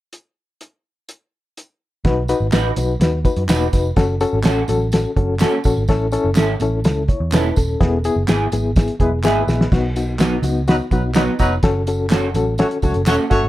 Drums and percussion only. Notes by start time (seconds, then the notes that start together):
0.13 closed hi-hat
0.61 closed hi-hat
1.09 closed hi-hat
1.57 closed hi-hat
2.05 kick, snare, closed hi-hat, muted conga
2.28 closed hi-hat, tambourine
2.52 snare, clap, closed hi-hat, tambourine, high conga
2.76 closed hi-hat, tambourine, muted conga, low conga
3.01 snare, closed hi-hat, tambourine
3.25 kick, closed hi-hat, tambourine, muted conga
3.36 closed hi-hat
3.48 snare, clap, closed hi-hat, tambourine, high conga
3.60 high conga
3.73 kick, snare, closed hi-hat, tambourine
3.96 kick, snare, closed hi-hat, tambourine, muted conga
4.20 closed hi-hat, tambourine
4.43 snare, clap, closed hi-hat, tambourine, high conga
4.68 closed hi-hat, tambourine, muted conga, low conga
4.92 snare, closed hi-hat, tambourine
5.17 kick, closed hi-hat, muted conga, low conga
5.40 snare, clap, closed hi-hat, tambourine, high conga
5.52 high conga
5.64 kick, closed hi-hat, tambourine
5.88 kick, snare, closed hi-hat, tambourine, muted conga
6.12 closed hi-hat, tambourine
6.35 snare, clap, closed hi-hat, tambourine, high conga
6.60 closed hi-hat, tambourine, muted conga, low conga
6.84 snare, closed hi-hat, tambourine
7.08 kick, closed hi-hat, muted conga
7.32 snare, clap, closed hi-hat, tambourine, high conga
7.44 high conga
7.56 kick, closed hi-hat, tambourine
7.80 kick, snare, closed hi-hat, muted conga
8.04 closed hi-hat, tambourine
8.28 snare, clap, closed hi-hat, tambourine, high conga
8.52 closed hi-hat, tambourine, muted conga, low conga
8.76 kick, snare, closed hi-hat, tambourine
8.88 closed hi-hat
9.00 kick, closed hi-hat, muted conga, low conga
9.24 snare, clap, tambourine, high conga
9.36 high conga
9.48 snare, tambourine
9.61 snare
9.72 kick, snare, crash, tambourine, muted conga
9.96 closed hi-hat, tambourine
10.19 snare, clap, closed hi-hat, tambourine, high conga
10.43 closed hi-hat, tambourine, muted conga, low conga
10.67 snare, closed hi-hat, tambourine
10.91 kick, closed hi-hat, tambourine, muted conga, low conga
11.15 snare, clap, closed hi-hat, tambourine, high conga
11.27 high conga
11.39 kick, snare, closed hi-hat, tambourine
11.63 kick, snare, closed hi-hat, tambourine, muted conga
11.87 closed hi-hat, tambourine
12.10 snare, clap, closed hi-hat, tambourine, high conga
12.34 closed hi-hat, tambourine, muted conga, low conga
12.58 snare, closed hi-hat, tambourine
12.71 closed hi-hat
12.82 kick, closed hi-hat, tambourine, muted conga, low conga
12.94 closed hi-hat
13.06 snare, clap, closed hi-hat, tambourine, high conga
13.19 high conga
13.31 kick, snare, closed hi-hat, tambourine